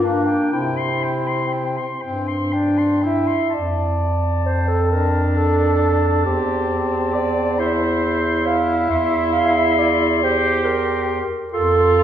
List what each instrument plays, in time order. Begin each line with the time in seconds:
Already playing: bass clarinet G2, tenor saxophone A#3
0.01 clarinet D4 F5
0.27 clarinet G5
0.52 bass clarinet C3, tenor saxophone C4, clarinet E4 G5
0.78 clarinet C6
1.04 clarinet G5
1.28 clarinet C6
1.53 clarinet G5
1.77 clarinet C6
2.02 bass clarinet G2, tenor saxophone C4, clarinet G5
2.28 clarinet C6
2.53 tenor saxophone D4, clarinet G5
2.78 clarinet C6
3.02 tenor saxophone E4, clarinet E5 G5
3.27 clarinet C6
3.50 bass clarinet F2, clarinet D5 A5
4.46 clarinet C5
4.68 clarinet A4
4.91 tenor saxophone D4, clarinet A#4
5.36 clarinet A4
6.25 bass clarinet E2, tenor saxophone C4, clarinet G4
7.15 clarinet D5
7.58 tenor saxophone E4, clarinet C5 C6
8.46 clarinet F5
8.90 bass clarinet E2, clarinet E5 C6
9.33 clarinet F5
9.57 clarinet E5
9.79 clarinet D5
10.23 tenor saxophone G4, clarinet C5
10.65 clarinet A#4
11.53 bass clarinet F2, tenor saxophone F4, clarinet A4 C6